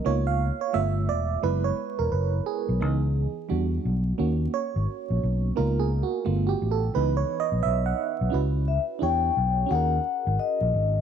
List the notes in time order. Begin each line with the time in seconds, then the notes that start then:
0.05 C#2 A#3 B3 D#4 F4 C#5
0.27 F5
0.61 C#5
0.73 G1 A3 B3 F4 E5
1.09 E1 D5
1.43 F#1 G#3 B3 E4 B4
1.64 C#5
1.99 E1 A#4
2.12 F#1 B4
2.46 G#4
2.69 B1
2.80 C#2 E3 B3 D#4
3.49 E2 G3 D4 F#4
3.85 B1
4.18 D#2 A#3 C#4 F#4
4.54 C#5
4.76 G#1
5.10 A#1
5.23 B1
5.56 C#2 A#3 B3 D#4 F4 A#4
5.80 G#4
6.03 F#4
6.25 G1 A3 B3 F4
6.47 F#4 G4
6.62 A1
6.71 A4
6.94 C#2 E3 B3 D#4 B4
7.17 C#5
7.40 D#5
7.52 A#1
7.63 B1 E5
7.86 F#5
8.21 B1
8.30 C#2 C#4 E4 F#4
8.34 B4
8.68 E5
8.99 E2 D4 E4 G4 C#5 G5
9.37 B1
9.66 C#4 F#4
9.71 D#2 G#4 F#5
9.75 A#4
10.27 G#1
10.39 D#5
10.61 A#1
10.74 G#1